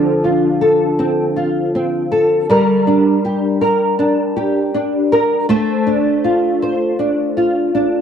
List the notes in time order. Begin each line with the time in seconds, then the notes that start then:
Already playing: D3 F3 C4 A4
0.24 F4
0.61 A4
0.99 C4
1.36 F4
1.75 C4
2.11 A4
2.50 G3 A#4
2.87 D4
3.25 G4
3.61 A#4
3.99 D4
4.36 G4
4.74 D4
5.12 A#4
5.49 A3 C5
5.87 D4
6.24 F4
6.62 C5
6.99 D4
7.37 F4
7.75 D4